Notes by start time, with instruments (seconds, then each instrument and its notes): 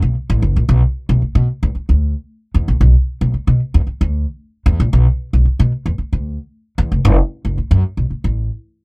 0.02 upright bass B1
0.30 upright bass A1
0.42 upright bass F#1
0.56 upright bass A#1
0.69 upright bass B1
1.09 upright bass B1
1.22 muted upright bass stroke
1.35 upright bass B2
1.63 upright bass E2
1.75 muted upright bass stroke
1.89 upright bass D2
2.54 upright bass E2
2.68 upright bass A#1
2.81 upright bass B1
3.21 upright bass B1
3.34 muted upright bass stroke
3.47 upright bass B2
3.74 upright bass E2
3.87 muted upright bass stroke
4.01 upright bass D2
4.66 upright bass E2
4.80 upright bass A#1
4.93 upright bass B1
5.33 upright bass B1
5.45 muted upright bass stroke
5.59 upright bass B2
5.86 upright bass E2
5.98 muted upright bass stroke
6.13 upright bass D2
6.78 upright bass E2
6.92 upright bass F1
7.05 upright bass F#1
7.45 upright bass F#1
7.58 muted upright bass stroke
7.71 upright bass F#2
7.97 upright bass B1
8.10 muted upright bass stroke
8.24 upright bass A1